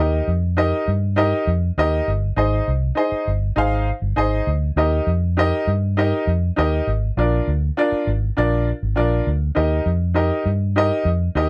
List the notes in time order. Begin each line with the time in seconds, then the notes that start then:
Already playing: D#2 D#4 G4
0.00 A#4 D#5
0.28 F2
0.57 D#4 G4 A#4 D#5
0.88 G2
1.16 D#4 G4 A#4 D#5
1.47 F2
1.78 D#2 D#4 G4 A#4 D#5
2.08 G1
2.36 G#1 D#4 G#4 C5 D#5
2.68 C2
2.95 D#4 G#4 C5 D#5
3.12 muted fingered electric bass stroke
3.27 G1
3.56 G#1 D#4 G#4 C5 F5
4.02 G1
4.16 G#1 D#4 G#4 C5 D#5
4.47 D2
4.76 D#2 D#4 G4 A#4 D#5
5.07 F2
5.37 D#4 G4 A#4 D#5
5.67 G2
5.97 D#4 G4 A#4 D#5
6.27 F2
6.56 D#2 D#4 G4 A#4 D#5
6.87 G#1
7.17 A#1 D4 F4 A#4 D5
7.48 D2
7.77 D4 F4 A#4 D5
7.92 muted fingered electric bass stroke
8.07 G#1
8.37 A#1 D4 F4 A#4 D5
8.83 G#1
8.96 A#1 D4 F4 A#4 D5
9.27 D2
9.55 D#2 D#4 G4 A#4 D#5
9.86 F2
10.14 D#4 G4 A#4 D#5
10.46 G2
10.76 D#4 G4 A#4 D#5
11.05 F2
11.35 D#2 D#4 G4 A#4 D#5